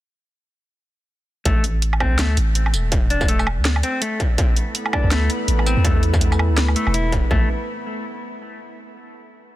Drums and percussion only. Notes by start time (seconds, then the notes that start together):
1.45 kick, closed hi-hat
1.64 closed hi-hat
1.82 closed hi-hat
1.93 low woodblock
2.00 kick, low woodblock
2.19 snare, closed hi-hat
2.37 closed hi-hat
2.55 closed hi-hat
2.66 low woodblock
2.74 closed hi-hat, tambourine
2.92 kick, closed hi-hat
3.10 closed hi-hat
3.21 kick, tambourine
3.28 closed hi-hat
3.39 tambourine, low woodblock
3.47 low woodblock
3.65 snare, closed hi-hat
3.76 low woodblock
3.83 closed hi-hat
4.02 closed hi-hat
4.20 kick, closed hi-hat
4.38 kick, closed hi-hat
4.56 closed hi-hat
4.75 closed hi-hat
4.86 low woodblock
4.93 kick, low woodblock
5.11 snare, closed hi-hat
5.30 closed hi-hat
5.48 closed hi-hat
5.59 low woodblock
5.66 closed hi-hat, tambourine
5.84 kick, closed hi-hat
6.03 closed hi-hat
6.14 kick, tambourine
6.21 closed hi-hat
6.32 tambourine, low woodblock
6.39 low woodblock
6.58 snare, closed hi-hat
6.68 low woodblock
6.76 closed hi-hat
6.87 low woodblock
6.94 closed hi-hat
7.12 kick, closed hi-hat
7.31 kick